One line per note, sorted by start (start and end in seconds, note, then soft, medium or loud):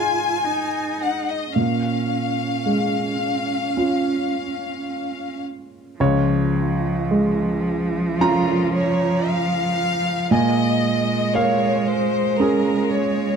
0.00 1.51 G#2 medium
0.00 1.58 G#3 soft
0.00 1.51 D#4 soft
0.00 0.46 F4 medium
0.00 1.51 G#4 soft
0.00 1.00 G#5 medium
0.44 1.54 D#4 soft
1.01 1.28 F#5 soft
1.29 1.56 D#5 soft
1.54 5.95 A#2 soft
1.54 5.39 C#4 soft
1.54 5.43 F5 medium
2.66 4.44 G#3 soft
3.77 5.95 C#4 soft
3.77 5.95 F4 soft
5.98 10.27 C#2 medium
5.98 10.30 F3 medium
5.98 8.16 C#5 medium
7.11 8.85 G#3 soft
8.18 10.28 C#4 soft
8.18 8.68 F4 medium
8.18 10.28 F4 medium
8.18 10.28 A#5 medium
8.74 9.26 C#5 medium
9.27 10.32 F5 medium
10.29 13.36 A#2 medium
10.29 13.36 G#3 medium
10.29 11.33 D#5 medium
10.29 11.31 G#5 medium
11.34 13.01 A#3 soft
11.34 11.87 C#5 medium
11.34 13.36 F5 medium
11.88 12.40 C5 medium
12.40 13.36 C#4 soft
12.40 13.36 G#4 medium
12.40 12.91 A#4 medium
12.91 13.36 C#5 medium